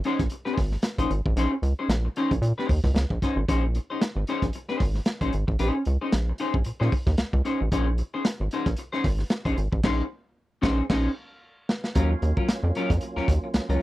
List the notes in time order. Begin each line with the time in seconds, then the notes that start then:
0.04 C#4 D#4 G#4 C5, closed hi-hat
0.19 A#1, muted clean electric guitar stroke, kick, snare, closed hi-hat
0.30 muted clean electric guitar stroke, closed hi-hat
0.45 C#4 D#4 G#4 C5, snare
0.57 G#1, muted clean electric guitar stroke, kick, snare, open hi-hat
0.71 muted clean electric guitar stroke, snare
0.82 muted clean electric guitar stroke, snare, closed hi-hat
0.98 A#1 C#4 D#4 G#4 C5, kick, closed hi-hat
1.10 G#1, muted clean electric guitar stroke, closed hi-hat
1.26 A1, muted clean electric guitar stroke, kick
1.36 A#1 C#4 D#4 G#4 C5, closed hi-hat
1.52 muted clean electric guitar stroke
1.62 C#2, muted clean electric guitar stroke, closed hi-hat
1.79 C#4 D#4 G#4 C5
1.89 A#1, snare, closed hi-hat
2.05 muted clean electric guitar stroke
2.16 C#4 D#4 G#4 C5, closed hi-hat
2.31 A#1, muted clean electric guitar stroke, kick, closed hi-hat
2.42 A#2, muted clean electric guitar stroke, closed hi-hat
2.58 C#4 D#4 G#4 C5, snare
2.69 D#2, muted clean electric guitar stroke, kick, open hi-hat
2.84 C#2, muted clean electric guitar stroke, kick, snare
2.94 C#2, snare, closed hi-hat
3.10 A#1, muted clean electric guitar stroke, kick
3.22 C#4 D#4 G#4 C5, kick, snare, closed hi-hat
3.36 G#1, muted clean electric guitar stroke
3.48 A#1 C#4 D#4 G#4 C5, kick, closed hi-hat
3.64 muted clean electric guitar stroke
3.75 muted clean electric guitar stroke, closed hi-hat
3.90 C#4 D#4 G#4 C5
4.01 snare, closed hi-hat
4.16 G#1, muted clean electric guitar stroke
4.27 C#4 D#4 G#4 C5, closed hi-hat
4.42 A#1, muted clean electric guitar stroke, kick, snare, closed hi-hat
4.53 muted clean electric guitar stroke, closed hi-hat
4.68 C#4 D#4 G#4 C5, snare
4.80 G#1, muted clean electric guitar stroke, kick, snare, open hi-hat
4.94 muted clean electric guitar stroke, snare
5.05 muted clean electric guitar stroke, snare, closed hi-hat
5.21 A#1 C#4 D#4 G#4 C5, kick, closed hi-hat
5.33 G#1, muted clean electric guitar stroke, closed hi-hat
5.47 A1, muted clean electric guitar stroke, kick
5.59 A#1 C#4 D#4 G#4 C5, closed hi-hat
5.75 muted clean electric guitar stroke
5.85 C#2, muted clean electric guitar stroke, closed hi-hat
6.01 C#4 D#4 G#4 C5
6.12 A#1, snare, closed hi-hat
6.29 muted clean electric guitar stroke
6.38 C#4 D#4 G#4 C5, closed hi-hat
6.54 A#1, muted clean electric guitar stroke, kick
6.64 A#2, muted clean electric guitar stroke, closed hi-hat
6.80 A#2 C#4 D#4 G#4 C5, snare
6.92 muted clean electric guitar stroke, kick, open hi-hat
7.06 D#2, muted clean electric guitar stroke, kick, snare
7.18 C#2, snare, closed hi-hat
7.33 C#2, muted clean electric guitar stroke, kick
7.45 C#4 D#4 G#4 C5, snare, closed hi-hat
7.61 A1, muted clean electric guitar stroke
7.72 A#1 C#4 D#4 G#4 C5, kick, closed hi-hat
7.87 muted clean electric guitar stroke
7.98 muted clean electric guitar stroke, closed hi-hat
8.14 C#4 D#4 G#4 C5
8.25 snare, closed hi-hat
8.40 G#1, muted clean electric guitar stroke
8.51 C#4 D#4 G#4 C5, closed hi-hat
8.66 A#1, muted clean electric guitar stroke, kick, snare, closed hi-hat
8.77 muted clean electric guitar stroke, closed hi-hat
8.93 C#4 D#4 G#4 C5, snare
9.04 G#1, muted clean electric guitar stroke, kick, snare, open hi-hat
9.19 muted clean electric guitar stroke, snare
9.30 muted clean electric guitar stroke, snare, closed hi-hat
9.45 A#1 C#4 D#4 G#4 C5, kick, closed hi-hat
9.57 G#1, muted clean electric guitar stroke, closed hi-hat
9.72 A1, muted clean electric guitar stroke, kick
9.83 A#1 C#4 D#4 G#4 C5, kick, snare, crash
10.62 A#1 C#4 D#4 G#4 C5, kick, snare
10.90 A#1 C#4 D#4 G#4 C5, kick, snare, crash
11.69 snare
11.84 snare
11.95 D#2 F#3 A#3 C#4 F4 A#4, kick, closed hi-hat
12.11 muted clean electric guitar stroke
12.22 D#2, muted clean electric guitar stroke, closed hi-hat
12.37 F#3 C#4 F4 A#4, kick
12.49 snare, closed hi-hat
12.63 F2, muted clean electric guitar stroke
12.75 F#3 C#4 F4 A#4, closed hi-hat
12.90 F2, muted clean electric guitar stroke, kick, snare, closed hi-hat
13.01 muted clean electric guitar stroke, closed hi-hat
13.16 D#2 F#3 C#4 F4 A#4, snare
13.28 D#2, muted clean electric guitar stroke, kick, snare, closed hi-hat
13.44 muted clean electric guitar stroke
13.54 C#2, muted clean electric guitar stroke, snare, closed hi-hat
13.69 C#2 F#3 C#4 F4 A#4, closed hi-hat